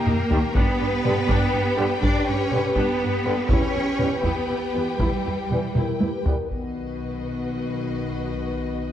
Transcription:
Already playing: cello section A#3, violin section G4 A#4 G5, viola section G4
0.05 double bass section D#2, viola section D#4, taiko low-mid
0.29 double bass section D#2, trombone section D#3 G3, viola section A#3, french horn section D#4 G4, taiko low
0.54 double bass section G2, cello section B3, viola section D4 G4, violin section B4 G5, taiko
0.80 double bass section G2, viola section D4
1.04 double bass section G2, trombone section D3 G3, viola section B3, french horn section G4 B4, taiko mid
1.28 double bass section G2, viola section D4, taiko
1.52 double bass section G2, viola section D4
1.76 double bass section G2, trombone section D3 G3, viola section B3, french horn section G4 B4
2.02 double bass section G2, cello section D4, viola section D4, violin section D5, taiko
2.26 double bass section G2, cello section C#4, viola section D4, violin section C#5
2.51 double bass section G2, trombone section D3 G3, viola section B3, french horn section G4 B4, taiko mid
2.75 double bass section G2, cello section B3, viola section D4, violin section B4, taiko
3.01 double bass section G2, viola section D4
3.25 double bass section G2, trombone section D3 G3, viola section B3, french horn section G4 B4
3.48 double bass section E2, cello section C#4, viola section E4 G4, violin section B4 C#5 G5, taiko
3.74 double bass section E2, viola section E4
3.97 double bass section E2, trombone section E3 G3, viola section B3, french horn section G4 B4, taiko mid
4.23 double bass section E2, cello section B3, viola section E4, violin section B4, taiko
4.49 double bass section E2, viola section E4
4.73 double bass section E2, trombone section E3 G3, viola section B3, french horn section G4 B4
4.98 double bass section E2, cello section G3, viola section E4, violin section G4, taiko
5.23 double bass section E2, viola section E4
5.49 double bass section E2, trombone section E3 G3, viola section B3, french horn section G4 B4, taiko mid
5.75 double bass section E2, viola section E4, french horn section A#4, taiko mid
6.00 double bass section E2, viola section E4, french horn section B4, taiko high
6.25 double bass section E2, trombone section E3 G3, viola section B3, french horn section A#4, taiko low
6.49 double bass section B1, cello section B2, french horn section D#3 B3, viola section F#4, violin section B4 D#5, taiko

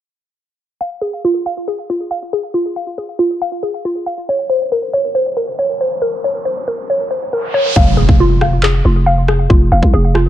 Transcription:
0.81 synth pluck F5
1.01 synth pluck G#4
1.25 synth pluck F4
1.46 synth pluck F5
1.68 synth pluck G#4
1.90 synth pluck F4
2.11 synth pluck F5
2.33 synth pluck G#4
2.54 synth pluck F4
2.76 synth pluck F5
2.98 synth pluck G#4
3.19 synth pluck F4
3.42 synth pluck F5
3.63 synth pluck G#4
3.85 synth pluck F4
4.06 synth pluck F5
4.28 synth pluck C#5, riser
4.50 synth pluck C5
4.72 synth pluck A#4
4.93 synth pluck C#5
5.15 synth pluck C5
5.37 synth pluck A#4
5.59 synth pluck C#5
5.81 synth pluck C5
6.02 synth pluck A#4
6.24 synth pluck C#5
6.45 synth pluck C5
6.68 synth pluck A#4
6.90 synth pluck C#5
7.11 synth pluck C5
7.33 synth pluck A#4
7.54 synth pluck C#5
7.76 808-style bass F1, synth pluck F5, kick, impact
7.97 808-style bass E1, synth pluck G#4
8.09 808-style bass F1, kick
8.20 synth pluck F4
8.41 synth pluck F5, cross-stick
8.63 synth pluck G#4, clap
8.85 808-style bass F1, synth pluck F4
9.06 synth pluck F5
9.28 synth pluck G#4, cross-stick
9.50 808-style bass F1, synth pluck F4, kick
9.72 808-style bass F1, synth pluck F5
9.83 808-style bass C2, kick
9.94 808-style bass F1, synth pluck G#4
10.15 synth pluck F4, cross-stick
10.26 808-style bass C2

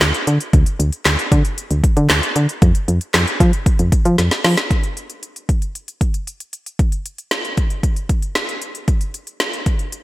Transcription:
0.01 fm bass D2, snare, clap, closed hi-hat
0.14 closed hi-hat
0.27 fm bass D3, closed hi-hat
0.40 closed hi-hat
0.53 fm bass D2, kick, closed hi-hat
0.66 closed hi-hat
0.79 fm bass D2, closed hi-hat
0.92 closed hi-hat
1.05 fm bass D2, snare, clap, closed hi-hat
1.19 closed hi-hat
1.32 fm bass D3, kick, closed hi-hat
1.45 closed hi-hat
1.58 closed hi-hat
1.71 fm bass D2, closed hi-hat
1.84 kick, closed hi-hat
1.97 fm bass D3, closed hi-hat
2.10 fm bass D2, snare, clap, closed hi-hat
2.23 closed hi-hat
2.36 fm bass D3, closed hi-hat
2.49 closed hi-hat
2.62 fm bass F2, kick, closed hi-hat
2.75 closed hi-hat
2.88 fm bass F2, closed hi-hat
3.01 closed hi-hat
3.14 fm bass F2, snare, clap, closed hi-hat
3.27 closed hi-hat
3.40 fm bass F3, kick, closed hi-hat
3.53 closed hi-hat
3.66 kick, closed hi-hat
3.79 fm bass F2, closed hi-hat
3.92 kick, closed hi-hat
4.05 fm bass F3, closed hi-hat
4.18 fm bass F2, snare, closed hi-hat
4.31 snare, closed hi-hat
4.44 fm bass F3, snare, open hi-hat
4.57 snare, closed hi-hat
4.71 kick, closed hi-hat
4.83 closed hi-hat
4.97 closed hi-hat
5.10 closed hi-hat
5.23 closed hi-hat
5.36 closed hi-hat
5.49 kick, closed hi-hat
5.62 closed hi-hat
5.75 closed hi-hat
5.88 closed hi-hat
6.01 kick, closed hi-hat
6.14 closed hi-hat
6.27 closed hi-hat
6.40 closed hi-hat
6.53 closed hi-hat
6.66 closed hi-hat
6.79 kick, closed hi-hat
6.92 closed hi-hat
7.06 closed hi-hat
7.18 closed hi-hat
7.31 snare, closed hi-hat
7.45 closed hi-hat
7.57 kick, closed hi-hat
7.70 closed hi-hat
7.83 kick, closed hi-hat
7.96 closed hi-hat
8.09 kick, closed hi-hat
8.22 closed hi-hat
8.35 snare, closed hi-hat
8.49 closed hi-hat
8.62 closed hi-hat
8.75 closed hi-hat
8.88 kick, closed hi-hat
9.01 closed hi-hat
9.14 closed hi-hat
9.27 closed hi-hat
9.40 snare, closed hi-hat
9.53 closed hi-hat
9.66 kick, closed hi-hat
9.79 closed hi-hat
9.92 closed hi-hat

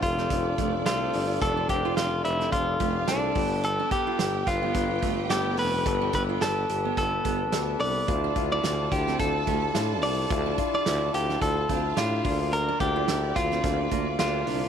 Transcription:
Already playing: grand piano D4 F4 A4 C5, violin section D4 D5
0.03 tuba F1, grand piano D4 F4 A4, clean electric guitar F4, kick, closed hi-hat
0.18 steel-string acoustic guitar C4, snare
0.30 tuba F1, grand piano D4 F4 A4, kick, closed hi-hat
0.58 tuba F1, steel-string acoustic guitar A3, grand piano D4 F4 A4, kick, closed hi-hat
0.85 tuba C2, steel-string acoustic guitar C4, grand piano D4 F4 A4, clean electric guitar F4, snare, closed hi-hat
1.13 tuba G1, grand piano D4 F4 A4, open hi-hat
1.41 tuba F1, grand piano D4 F4 A4, clean electric guitar A4, kick, closed hi-hat
1.57 steel-string acoustic guitar D4
1.69 tuba F1, grand piano D4 F4 C5, clean electric guitar G4, kick, closed hi-hat
1.85 steel-string acoustic guitar F4
1.96 tuba F1, grand piano D4 F4 G4, steel-string acoustic guitar D4, clean electric guitar F4, snare, closed hi-hat
2.25 tuba F1, grand piano D4 F4 A4, clean electric guitar E4, closed hi-hat
2.40 steel-string acoustic guitar C4, snare
2.52 tuba F1, grand piano D4 F4 A4, clean electric guitar F4, kick, closed hi-hat
2.80 tuba F1, steel-string acoustic guitar A3, grand piano D4 F4 G4, violin section F4 F5, kick, closed hi-hat
3.07 tuba C2, grand piano D4 F4 A4, steel-string acoustic guitar D4, clean electric guitar D4, snare, closed hi-hat
3.35 tuba G1, grand piano G2 B3 G4 A4, violin section G4 G5, kick, open hi-hat
3.63 clean electric guitar A4, closed hi-hat
3.79 steel-string acoustic guitar D4
3.91 grand piano B3 G4 A4, clean electric guitar G4, kick, closed hi-hat
4.07 steel-string acoustic guitar F4
4.19 tuba G1, grand piano B3 G4 A4, steel-string acoustic guitar D4, snare, closed hi-hat
4.46 tuba G1, grand piano B3 G4 B4, clean electric guitar F4, kick, closed hi-hat
4.63 steel-string acoustic guitar B3
4.74 tuba G1, grand piano B3 G4 B4, kick, closed hi-hat
5.02 tuba G1, steel-string acoustic guitar A3, grand piano B3 G4 A4, kick, closed hi-hat
5.30 tuba G1, grand piano B3 G4 A4, steel-string acoustic guitar B3, clean electric guitar G4, snare, closed hi-hat
5.57 tuba F1, grand piano G2 B3 G4 A4, clean electric guitar B4, open hi-hat
5.86 tuba G1, grand piano B3 G4 A4, kick, closed hi-hat
6.01 steel-string acoustic guitar D4
6.13 tuba G1, grand piano B3 G4 A4, clean electric guitar B4, kick, closed hi-hat
6.29 steel-string acoustic guitar F4
6.41 tuba G1, grand piano B3 G4 B4, steel-string acoustic guitar D4, clean electric guitar A4, snare, closed hi-hat
6.69 tuba G1, grand piano B3 G4 B4, closed hi-hat
6.85 steel-string acoustic guitar B3
6.97 tuba G1, grand piano B3 G4 A4, clean electric guitar A4, kick, closed hi-hat
7.25 tuba G1, grand piano B3 G4 B4, steel-string acoustic guitar B3, kick, closed hi-hat
7.52 tuba D2, grand piano B3 G4 A4, steel-string acoustic guitar D4, snare, closed hi-hat
7.80 tuba C2, grand piano B3 G4 B4, clean electric guitar D5, open hi-hat
8.08 tuba D2, grand piano D3 D4 E4 F4, violin section A4 A5, kick, closed hi-hat
8.24 steel-string acoustic guitar D4
8.36 tuba D2, grand piano D4 E4 F4, kick, closed hi-hat
8.52 steel-string acoustic guitar E4, clean electric guitar D5
8.63 tuba D2, grand piano D4 E4 G4, steel-string acoustic guitar D4, snare, closed hi-hat
8.91 tuba D2, grand piano D4 E4 F4, clean electric guitar G4, kick, closed hi-hat
9.07 steel-string acoustic guitar C4, snare
9.19 tuba D2, grand piano D4 E4 F4, clean electric guitar A4, kick, closed hi-hat
9.46 tuba D2, steel-string acoustic guitar A3, grand piano D4 E4 G4, kick, closed hi-hat
9.74 tuba A2, grand piano D4 E4 F4, steel-string acoustic guitar D4, snare, closed hi-hat
10.02 tuba C2, grand piano D4 E4 G4, clean electric guitar D5, open hi-hat
10.30 tuba D2, grand piano D3 D4 E4 F4, kick, closed hi-hat
10.46 steel-string acoustic guitar D4
10.58 grand piano D4 E4 F4, kick, closed hi-hat
10.74 steel-string acoustic guitar F4, clean electric guitar D5
10.85 tuba D2, grand piano D4 E4 G4, steel-string acoustic guitar E4, snare, closed hi-hat
11.13 tuba D2, grand piano D4 E4 F4, clean electric guitar G4, closed hi-hat
11.29 steel-string acoustic guitar D4, snare
11.41 tuba D2, grand piano D4 E4 F4, clean electric guitar A4, kick, closed hi-hat
11.69 tuba D2, steel-string acoustic guitar C4, grand piano D4 E4 F4, violin section F4 F5, kick, closed hi-hat
11.96 tuba A2, grand piano D4 E4 G4, steel-string acoustic guitar D4, clean electric guitar F4, snare, closed hi-hat
12.24 tuba D2, grand piano D3 A#3 D4 F4, violin section D4 D5, kick, open hi-hat
12.53 clean electric guitar A#4, closed hi-hat
12.69 steel-string acoustic guitar D4
12.80 tuba D2, grand piano A#3 D4 G4, clean electric guitar G4, kick, closed hi-hat
12.96 steel-string acoustic guitar F4
13.08 tuba D2, grand piano A#3 D4 E4, steel-string acoustic guitar D4, snare, closed hi-hat
13.35 tuba D2, grand piano A#3 D4 F4, clean electric guitar F4, kick, closed hi-hat
13.52 steel-string acoustic guitar C4, snare
13.63 tuba D2, grand piano A#3 D4 F4, kick, closed hi-hat
13.91 tuba D2, grand piano A#3 D4 F4, steel-string acoustic guitar A#3, kick, closed hi-hat
14.19 tuba D2, grand piano A#3 D4 G4, steel-string acoustic guitar D4, clean electric guitar F4, snare, closed hi-hat
14.47 tuba C2, grand piano D3 A#3 D4 F4, open hi-hat

